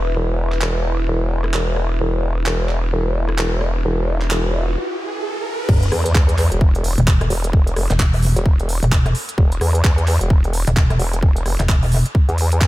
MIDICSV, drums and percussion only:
0, 0, Header, 1, 2, 480
1, 0, Start_track
1, 0, Tempo, 461538
1, 155, Time_signature, 4, 2, 24, 8
1, 13179, End_track
2, 0, Start_track
2, 0, Title_t, "Drums"
2, 543, Note_on_c, 9, 39, 34
2, 638, Note_off_c, 9, 39, 0
2, 638, Note_on_c, 9, 39, 109
2, 742, Note_off_c, 9, 39, 0
2, 1499, Note_on_c, 9, 37, 74
2, 1598, Note_on_c, 9, 39, 101
2, 1603, Note_off_c, 9, 37, 0
2, 1702, Note_off_c, 9, 39, 0
2, 1834, Note_on_c, 9, 37, 59
2, 1938, Note_off_c, 9, 37, 0
2, 2558, Note_on_c, 9, 39, 108
2, 2662, Note_off_c, 9, 39, 0
2, 2798, Note_on_c, 9, 39, 33
2, 2902, Note_off_c, 9, 39, 0
2, 3418, Note_on_c, 9, 37, 76
2, 3519, Note_on_c, 9, 39, 110
2, 3522, Note_off_c, 9, 37, 0
2, 3623, Note_off_c, 9, 39, 0
2, 3754, Note_on_c, 9, 37, 61
2, 3858, Note_off_c, 9, 37, 0
2, 4383, Note_on_c, 9, 39, 36
2, 4478, Note_off_c, 9, 39, 0
2, 4478, Note_on_c, 9, 39, 111
2, 4582, Note_off_c, 9, 39, 0
2, 5914, Note_on_c, 9, 36, 115
2, 5915, Note_on_c, 9, 49, 105
2, 6018, Note_off_c, 9, 36, 0
2, 6019, Note_off_c, 9, 49, 0
2, 6059, Note_on_c, 9, 42, 56
2, 6155, Note_on_c, 9, 37, 67
2, 6155, Note_on_c, 9, 46, 108
2, 6163, Note_off_c, 9, 42, 0
2, 6259, Note_off_c, 9, 37, 0
2, 6259, Note_off_c, 9, 46, 0
2, 6300, Note_on_c, 9, 42, 74
2, 6394, Note_on_c, 9, 36, 123
2, 6399, Note_on_c, 9, 39, 126
2, 6404, Note_off_c, 9, 42, 0
2, 6498, Note_off_c, 9, 36, 0
2, 6503, Note_off_c, 9, 39, 0
2, 6540, Note_on_c, 9, 42, 53
2, 6635, Note_on_c, 9, 46, 106
2, 6639, Note_on_c, 9, 39, 40
2, 6644, Note_off_c, 9, 42, 0
2, 6739, Note_off_c, 9, 46, 0
2, 6743, Note_off_c, 9, 39, 0
2, 6779, Note_on_c, 9, 42, 69
2, 6874, Note_on_c, 9, 36, 125
2, 6883, Note_off_c, 9, 42, 0
2, 6978, Note_off_c, 9, 36, 0
2, 7020, Note_on_c, 9, 42, 39
2, 7115, Note_on_c, 9, 46, 109
2, 7124, Note_off_c, 9, 42, 0
2, 7219, Note_off_c, 9, 46, 0
2, 7260, Note_on_c, 9, 42, 68
2, 7354, Note_on_c, 9, 36, 118
2, 7359, Note_on_c, 9, 39, 123
2, 7364, Note_off_c, 9, 42, 0
2, 7458, Note_off_c, 9, 36, 0
2, 7463, Note_off_c, 9, 39, 0
2, 7500, Note_on_c, 9, 37, 63
2, 7500, Note_on_c, 9, 42, 37
2, 7595, Note_on_c, 9, 46, 108
2, 7604, Note_off_c, 9, 37, 0
2, 7604, Note_off_c, 9, 42, 0
2, 7699, Note_off_c, 9, 46, 0
2, 7739, Note_on_c, 9, 42, 72
2, 7834, Note_on_c, 9, 36, 119
2, 7843, Note_off_c, 9, 42, 0
2, 7938, Note_off_c, 9, 36, 0
2, 7980, Note_on_c, 9, 42, 55
2, 8075, Note_on_c, 9, 37, 66
2, 8075, Note_on_c, 9, 46, 114
2, 8084, Note_off_c, 9, 42, 0
2, 8179, Note_off_c, 9, 37, 0
2, 8179, Note_off_c, 9, 46, 0
2, 8220, Note_on_c, 9, 42, 70
2, 8224, Note_on_c, 9, 39, 40
2, 8314, Note_on_c, 9, 36, 125
2, 8319, Note_off_c, 9, 39, 0
2, 8319, Note_on_c, 9, 39, 127
2, 8324, Note_off_c, 9, 42, 0
2, 8418, Note_off_c, 9, 36, 0
2, 8423, Note_off_c, 9, 39, 0
2, 8459, Note_on_c, 9, 46, 62
2, 8554, Note_off_c, 9, 46, 0
2, 8554, Note_on_c, 9, 46, 109
2, 8658, Note_off_c, 9, 46, 0
2, 8700, Note_on_c, 9, 42, 66
2, 8794, Note_on_c, 9, 36, 127
2, 8804, Note_off_c, 9, 42, 0
2, 8898, Note_off_c, 9, 36, 0
2, 8939, Note_on_c, 9, 42, 38
2, 9035, Note_on_c, 9, 46, 115
2, 9043, Note_off_c, 9, 42, 0
2, 9139, Note_off_c, 9, 46, 0
2, 9180, Note_on_c, 9, 42, 67
2, 9274, Note_on_c, 9, 36, 116
2, 9279, Note_on_c, 9, 39, 127
2, 9284, Note_off_c, 9, 42, 0
2, 9378, Note_off_c, 9, 36, 0
2, 9383, Note_off_c, 9, 39, 0
2, 9420, Note_on_c, 9, 37, 61
2, 9420, Note_on_c, 9, 42, 36
2, 9515, Note_on_c, 9, 46, 110
2, 9524, Note_off_c, 9, 37, 0
2, 9524, Note_off_c, 9, 42, 0
2, 9619, Note_off_c, 9, 46, 0
2, 9660, Note_on_c, 9, 42, 70
2, 9754, Note_on_c, 9, 36, 127
2, 9764, Note_off_c, 9, 42, 0
2, 9858, Note_off_c, 9, 36, 0
2, 9900, Note_on_c, 9, 42, 54
2, 9995, Note_on_c, 9, 37, 64
2, 9995, Note_on_c, 9, 46, 108
2, 10004, Note_off_c, 9, 42, 0
2, 10099, Note_off_c, 9, 37, 0
2, 10099, Note_off_c, 9, 46, 0
2, 10140, Note_on_c, 9, 42, 70
2, 10234, Note_on_c, 9, 36, 127
2, 10239, Note_on_c, 9, 39, 127
2, 10244, Note_off_c, 9, 42, 0
2, 10338, Note_off_c, 9, 36, 0
2, 10343, Note_off_c, 9, 39, 0
2, 10380, Note_on_c, 9, 42, 49
2, 10475, Note_on_c, 9, 46, 112
2, 10479, Note_on_c, 9, 39, 38
2, 10484, Note_off_c, 9, 42, 0
2, 10579, Note_off_c, 9, 46, 0
2, 10583, Note_off_c, 9, 39, 0
2, 10619, Note_on_c, 9, 42, 62
2, 10714, Note_on_c, 9, 36, 127
2, 10723, Note_off_c, 9, 42, 0
2, 10818, Note_off_c, 9, 36, 0
2, 10859, Note_on_c, 9, 42, 36
2, 10954, Note_on_c, 9, 46, 111
2, 10963, Note_off_c, 9, 42, 0
2, 11058, Note_off_c, 9, 46, 0
2, 11099, Note_on_c, 9, 42, 65
2, 11194, Note_on_c, 9, 36, 126
2, 11198, Note_on_c, 9, 39, 120
2, 11203, Note_off_c, 9, 42, 0
2, 11298, Note_off_c, 9, 36, 0
2, 11302, Note_off_c, 9, 39, 0
2, 11339, Note_on_c, 9, 37, 59
2, 11339, Note_on_c, 9, 42, 34
2, 11435, Note_on_c, 9, 46, 111
2, 11443, Note_off_c, 9, 37, 0
2, 11443, Note_off_c, 9, 42, 0
2, 11539, Note_off_c, 9, 46, 0
2, 11579, Note_on_c, 9, 42, 67
2, 11674, Note_on_c, 9, 36, 121
2, 11683, Note_off_c, 9, 42, 0
2, 11778, Note_off_c, 9, 36, 0
2, 11820, Note_on_c, 9, 42, 51
2, 11915, Note_on_c, 9, 37, 63
2, 11915, Note_on_c, 9, 46, 111
2, 11924, Note_off_c, 9, 42, 0
2, 12019, Note_off_c, 9, 37, 0
2, 12019, Note_off_c, 9, 46, 0
2, 12060, Note_on_c, 9, 42, 66
2, 12064, Note_on_c, 9, 39, 38
2, 12154, Note_on_c, 9, 36, 127
2, 12159, Note_off_c, 9, 39, 0
2, 12159, Note_on_c, 9, 39, 119
2, 12164, Note_off_c, 9, 42, 0
2, 12258, Note_off_c, 9, 36, 0
2, 12263, Note_off_c, 9, 39, 0
2, 12300, Note_on_c, 9, 46, 62
2, 12395, Note_off_c, 9, 46, 0
2, 12395, Note_on_c, 9, 46, 113
2, 12499, Note_off_c, 9, 46, 0
2, 12539, Note_on_c, 9, 42, 64
2, 12634, Note_on_c, 9, 36, 126
2, 12643, Note_off_c, 9, 42, 0
2, 12738, Note_off_c, 9, 36, 0
2, 12779, Note_on_c, 9, 42, 34
2, 12874, Note_on_c, 9, 46, 115
2, 12883, Note_off_c, 9, 42, 0
2, 12978, Note_off_c, 9, 46, 0
2, 13019, Note_on_c, 9, 42, 64
2, 13114, Note_on_c, 9, 36, 117
2, 13118, Note_on_c, 9, 39, 118
2, 13123, Note_off_c, 9, 42, 0
2, 13179, Note_off_c, 9, 36, 0
2, 13179, Note_off_c, 9, 39, 0
2, 13179, End_track
0, 0, End_of_file